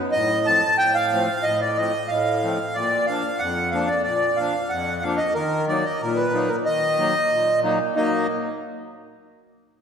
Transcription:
0.12 A2 D#5
0.46 F3 A3 C4 A5
0.78 A2 G5
0.95 F5
1.13 F3 A3 C4
1.43 A2 D#5
1.61 D5
1.77 F3 A3 C4 D#5
2.08 A2 F5
2.43 F3 A3 C4
2.75 A#2 D5
3.07 F3 A#3 D4 F5
3.39 F2 F#5
3.71 F3 A#3 D4 F5
3.87 D5
4.03 D5
4.07 A#2
4.36 F3 A#3 D4 F5
4.69 F2 F#5
5.02 F3 A#3 D4 F5
5.17 D#5
5.34 D#3 A#4
5.68 F#3 A#3 D#4 D5
5.85 D#5
6.01 A#2 A#4
6.16 B4
6.34 F#3 A#3 D#4
6.49 A#4
6.66 D#3 D#5
6.98 F#3 A#3 D#4
7.31 A#2
7.63 F#3 A#3 D#4
7.96 F#3 A#3 D#4 D#5

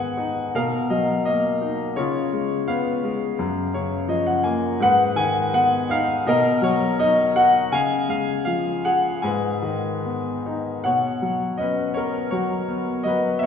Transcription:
Already playing: G#2 D#3 B3 B4 F#5 G#5
0.17 D#4
0.55 B2 A#4 F5
0.90 F#3 D#5
1.25 A#3 D#5
1.61 D#4
1.96 C#3 F4 C#5
2.33 G#3
2.67 B3 B4 F5
3.04 G#3
3.39 F#2
3.74 C#3 C#5
4.08 F3 D#5
4.26 F#5
4.44 A#3 G#5
4.80 G#2 B4 F#5
5.16 D#3 G#5
5.53 B3 F#5
5.89 D#4 F5
6.26 B2 A#4 D#5
6.62 F#3 C#5
6.99 D#4 D#5
7.36 F#4 F#5
7.72 C#3 F5 G#5
8.08 G#3 F5
8.45 F3 F5
8.85 G#4 F#5
9.22 G#2 B4 G#5
9.62 D#3
10.05 B3
10.46 D#4
10.84 B2 C#5 F#5
11.22 F#3
11.57 C#4 B4 D#5
11.94 B3 A#4 C#5
12.30 F#3 F#4 C#5
12.68 B3
13.03 F#3 D#5
13.07 B4
13.39 B3 C#5 E5

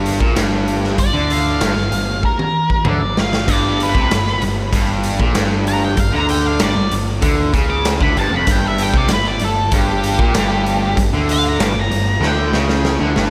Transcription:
Already playing: G1 G2
0.06 closed hi-hat
0.20 A#1 A#2, kick
0.35 G1 G2, snare, closed hi-hat
0.68 closed hi-hat
0.84 snare
0.98 G1 G2 D5, kick, closed hi-hat
1.13 D2 D3
1.30 F5, closed hi-hat
1.60 G1 G2, snare, closed hi-hat
1.76 G1 G2, snare
1.91 G1 G2, closed hi-hat
2.23 A#4, kick
2.39 high tom
2.70 kick
2.85 D2 D3 D5, mid tom
3.01 G1 G2
3.17 G1 G2 F5, snare
3.33 snare
3.48 G1 G2, kick, closed hi-hat, crash
3.52 D5
3.80 B4, closed hi-hat
3.94 C2 C3, kick, snare
4.11 G1 G2, snare, closed hi-hat
4.27 snare
4.42 G1 G2, closed hi-hat
4.72 G1 G2, kick, closed hi-hat
5.03 closed hi-hat
5.20 A#1 A#2, kick
5.35 G1 G2, snare, closed hi-hat
5.67 A#5, closed hi-hat
5.85 G5
5.97 G1 G2 F5, kick, closed hi-hat
6.13 D2 D3 A#5
6.29 G5, closed hi-hat
6.46 F5
6.59 G1 G2 D5, snare, closed hi-hat
6.75 G1 G2
6.91 G1 G2, closed hi-hat
7.21 D2 D3, kick, closed hi-hat
7.53 C#2 C#3, kick, closed hi-hat
7.70 D6
7.85 snare, closed hi-hat
8.00 D2 D3 B5, kick
8.16 G1 G2 A5, closed hi-hat
8.31 F1 F2
8.36 B5
8.47 G1 G2, kick, closed hi-hat
8.51 G5
8.68 E5
8.78 closed hi-hat
8.82 G5
8.94 C2 C3 D5, kick, snare
9.08 G1 G2, snare, closed hi-hat
9.13 B4
9.25 D5, snare
9.39 G1 G2, closed hi-hat
9.44 A4
9.71 G1 G2 G4, kick, closed hi-hat
10.04 closed hi-hat
10.19 A#1 A#2, kick
10.34 G1 G2, snare, closed hi-hat
10.66 closed hi-hat
10.97 G1 G2, kick, closed hi-hat
11.13 D2 D3
11.29 F5, closed hi-hat
11.49 A#5
11.59 G1 G2, snare, closed hi-hat
11.64 D6
11.74 G1 G2
11.80 A#5
11.89 G1 G2, closed hi-hat
12.21 D2 D3, snare
12.27 G5
12.52 C#2 C#3, snare
12.69 snare
12.85 snare
13.00 D2 D3
13.16 G1 G2, snare

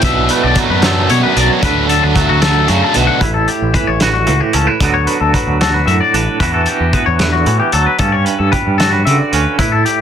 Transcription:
Already playing: E3
0.00 B1 B2 F#3 B3 D4, kick, closed hi-hat
0.04 E5
0.28 F#3 A3 B3 D4 B4, closed hi-hat
0.43 B1 D5
0.55 B2 F#3 B3 D4 B4, kick, closed hi-hat
0.70 F#2 B4
0.82 F#2 F#3 B3 D4 A4, snare, closed hi-hat
1.09 B2 F#3 B3 D4 C#5, closed hi-hat
1.23 B4
1.35 B1 F#3 B3 D4 D5, closed hi-hat
1.50 C#5
1.60 D2 D3 F#3 A3 D4 B4, kick, closed hi-hat
1.87 A3 D4 A4, closed hi-hat
1.91 F#3
2.03 D2 B4
2.13 D3 F#3 A3 D4 A4, kick, closed hi-hat
2.29 D2 F#4
2.40 D3 F#3 A3 D4 A4, snare, closed hi-hat
2.67 F#2 C#3 D3 F#3 A3 D4 F#4, closed hi-hat
2.82 A4
2.94 B1 B2 F#3 A3 D4 F#4, closed hi-hat
3.07 F#5
3.21 A1 A2 E4 B4, kick, closed hi-hat
3.34 A4
3.48 G4, closed hi-hat
3.62 A1
3.74 E3 B4, kick, closed hi-hat
3.87 A1 C#5
4.00 F#4 B4, snare, closed hi-hat
4.13 F#4
4.27 C#2 A2, closed hi-hat
4.40 G4
4.53 C#2 C#4 A4, closed hi-hat
4.67 E4 B4
4.80 D2 D3 F#3 B3 D4 F#4 A4, kick, closed hi-hat
4.94 C#5
5.07 B4, closed hi-hat
5.21 D2 A4
5.34 F#3 B4, kick, closed hi-hat
5.47 D2
5.61 F#4 A4, snare, closed hi-hat
5.74 B4
5.87 F#2 A2 E5, closed hi-hat
6.00 D5
6.14 A1 D4 B4, closed hi-hat
6.40 E2 E3 B3 D4 F#4 B4, kick, closed hi-hat
6.54 A4
6.66 G4, closed hi-hat
6.80 E2
6.93 B3 B4, kick, closed hi-hat
7.06 E2 C#5
7.19 D3 B4, snare, closed hi-hat
7.33 F#4
7.46 A2 E3, closed hi-hat
7.60 G4
7.72 D2 F#3 A4, closed hi-hat
7.86 B4
7.99 G2 C#4 A4, kick, closed hi-hat
8.12 C#5
8.25 B4, closed hi-hat
8.39 G2 A4
8.52 G3 B4, kick, closed hi-hat
8.67 G2
8.78 F#4 A4, snare, closed hi-hat
8.92 B4
9.05 C#3 D3 E5, closed hi-hat
9.19 D5
9.32 D2 C#4 B4, closed hi-hat
9.58 A2 E4 B4, kick, closed hi-hat
9.72 A4
9.85 G4, closed hi-hat

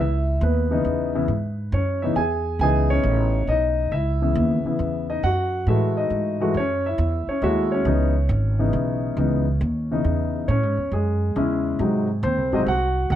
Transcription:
Already playing: C#2
0.01 E4 E5
0.41 D#2 B3 B4
0.71 C#3 E3 B3 D#4
0.84 E2
1.15 C#3 E3 B3 E4
1.28 G#2
1.72 F#2 C#4 C#5
2.02 C#3 E3 B3 D#4 E4 E5
2.16 E2 G#4 G#5
2.59 C#2 C#3 E3 B3 D#4 G#4 G#5
2.90 C#4 C#5
3.03 A1
3.47 B1 D#4 D#5
3.92 C#2 E4 E5
4.22 C#3 E3 B3 E4
4.35 D#2
4.64 C#3 E3 B3 E4, muted upright bass stroke
4.79 E2
5.10 D#4 D#5
5.23 F#2 F#4 F#5
5.67 A2 E3 G#3 A3 E4 F#4 E5
5.97 D#4 D#5
6.10 G#2
6.40 E3 G#3 A3 F#4
6.54 F#2 C#5
6.59 C#4
6.86 E4 E5
6.98 E2
7.27 C#4 C#5, muted upright bass stroke
7.42 D#2 G#3 A3 E4 F#4 E5
7.72 C#4 C#5
7.85 C#2 C#3 E3 B3 D#4
8.29 G#1
8.59 C#3 E3 B3 D#4
8.73 B1
9.17 C#2 C#3 E3 B3 D#4
9.61 D#2
9.91 C#3 E3 B3 D#4
10.04 E2
10.48 A2 C#4 C#5
10.63 G#2
10.77 E2
10.92 F#2 G#3 G#4
11.36 E2 C#3 G#3 C#4 E4
11.79 G#2 C3 F#3 G#3 D#4
12.23 D#2 C4 C5
12.37 C2
12.52 G#1 C3 F#3 G#3 C4 D#5
12.57 D#4
12.67 C2 F#4 F#5
13.10 C#2 F#5

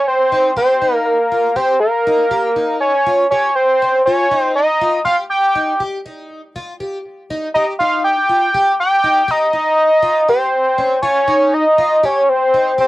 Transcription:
0.08 C5 G5
0.32 D#4
0.57 G4 C5 G5
0.82 D#4
0.94 A#4 F5
1.05 A#4 F5
1.32 F4
1.56 G4 C5 G5
1.80 A#4 F5
2.07 D#4
2.31 G4
2.56 D#4
2.80 C#5 G#5
3.06 F4
3.31 G4 C#5 G#5
3.55 C5 G5
3.82 C#4
4.06 F4 C#5 G#5
4.31 D#4
4.40 C5 G5
4.56 D#5 A#5
4.81 F4
5.05 G4 F5 C6
5.30 G5 D6
5.55 D#4
5.80 G4
6.06 D#4
6.56 F4
6.80 G4
7.30 D#4
7.54 G4 D#5 A#5
7.79 D#4 F5 C6
8.04 G5 D6
8.29 F4
8.54 G4
8.80 G5 D6
9.04 D#4
9.28 G4 D#5 A#5
9.53 D#4
10.03 F4
10.29 G4 C5 G5
10.78 C#4
11.02 F4 C#5 G#5
11.28 D#4
11.54 D#5 A#5
11.78 F4
12.03 G4 C#5 G#5
12.29 C5 G5
12.54 D#4
12.78 G4 C5 G5

